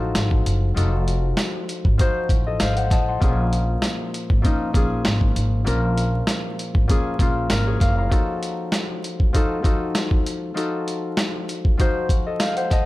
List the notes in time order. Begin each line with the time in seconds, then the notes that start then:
Already playing: A1 F3 C#4 D#4 F#4 A4
0.15 G#1, snare, closed hi-hat, tambourine
0.31 kick
0.46 F#1, closed hi-hat
0.74 F1 F3 D#4 F#4 A4, closed hi-hat
1.08 closed hi-hat
1.37 snare, closed hi-hat, tambourine
1.69 closed hi-hat
1.85 G#1, kick
1.98 F3 D#4 F#4 C5, kick, closed hi-hat
2.29 A1, kick, closed hi-hat
2.47 A4 D#5
2.60 G#1 C5 F5, snare, closed hi-hat, tambourine
2.77 C5 F#5, closed hi-hat
2.90 A1 D#5 A5, kick, snare, closed hi-hat
3.08 F#5 C6
3.20 A#1 A#2 F3 C#4 G#4, kick, closed hi-hat
3.53 closed hi-hat
3.82 snare, closed hi-hat, tambourine
4.14 closed hi-hat
4.30 G#1, kick
4.42 A#2 F3 C#4 D#4, kick, closed hi-hat
4.73 A#1 A#2 F3 C#4 G#4, kick, closed hi-hat
5.05 G#1, snare, closed hi-hat, tambourine
5.21 kick
5.36 G#1, closed hi-hat
5.64 A#1 A#2 F3 C#4 A#4, closed hi-hat
5.98 closed hi-hat
6.27 snare, closed hi-hat, tambourine
6.59 closed hi-hat
6.75 G#1, kick
6.88 A#2 F3 C#4 G#4, kick, closed hi-hat
7.19 A#1 A#2 F3 C#4 F4, kick, closed hi-hat
7.50 G#1 F4 A#4, snare, closed hi-hat, tambourine
7.67 G#4 C#5
7.80 F#1 A#4 F5, kick, snare, closed hi-hat
7.98 F5 A#5
8.09 F3 D#4 F#4 A4, kick, closed hi-hat
8.43 closed hi-hat
8.72 snare, closed hi-hat, tambourine
9.04 closed hi-hat
9.20 kick
9.33 F3 D#4 F#4 A4, kick, closed hi-hat
9.62 F3 D#4 F#4 A4, kick, closed hi-hat
9.95 snare, closed hi-hat, tambourine
10.11 kick
10.26 closed hi-hat
10.54 F3 D#4 F#4 A4, closed hi-hat
10.88 closed hi-hat
11.17 snare, closed hi-hat, tambourine
11.49 closed hi-hat
11.65 kick
11.77 F3 D#4 F#4 C5, kick, closed hi-hat
12.09 kick, closed hi-hat
12.26 A4 D#5
12.40 C5 F5, snare, closed hi-hat, tambourine
12.57 C5 F#5, closed hi-hat
12.71 D#5 A5, kick, snare, closed hi-hat